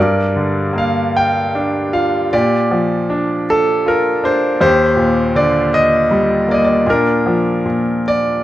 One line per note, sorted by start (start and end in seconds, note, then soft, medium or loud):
0.00 2.28 G2 medium
0.00 1.13 A#4 soft
0.00 0.73 D5 medium
0.36 1.90 D3 soft
0.73 2.27 A#3 soft
0.78 1.18 F5 medium
1.17 1.91 G5 medium
1.55 2.30 D4 soft
1.93 2.31 F4 soft
1.93 2.34 F5 medium
2.33 4.57 A#2 medium
2.33 3.45 G4 medium
2.33 3.45 D5 medium
2.71 4.20 F3 soft
3.10 4.22 D4 soft
3.50 3.85 A4 medium
3.86 4.59 F4 medium
3.86 4.26 A#4 medium
4.24 4.60 D4 medium
4.24 4.60 C5 medium
4.61 6.83 D#2 medium
4.61 5.68 G4 medium
4.61 5.37 C5 medium
4.96 6.44 A#2 medium
5.35 6.83 D3 soft
5.35 5.74 D5 medium
5.74 6.52 D#5 medium
6.11 6.85 G3 medium
6.48 6.86 A#3 soft
6.48 6.57 D5 medium
6.54 6.62 D#5 medium
6.65 6.89 D5 medium
6.86 7.64 A#2 medium
6.86 8.02 D4 medium
6.86 8.03 A#4 medium
7.26 8.44 F3 soft
7.66 8.44 A#2 soft
8.08 8.44 D5 medium